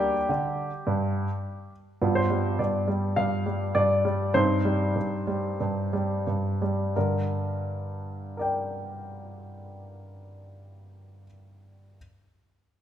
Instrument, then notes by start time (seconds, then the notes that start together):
grand piano
Already playing: G3 A#3 D4 G4
0.29 D3
0.87 G2
2.02 G2 B3 F4
2.15 C5
2.30 G3
2.59 G2 D5
2.88 G3
3.16 G2 F5
3.46 G3
3.75 G2 D5
4.05 G3
4.34 G2 C4 D#4 C5
4.65 G3
4.96 G2
5.27 G3
5.60 G2
5.93 G3
6.27 G2
6.62 G3
6.96 G2 D3 A#4
8.37 A#4 D5 G5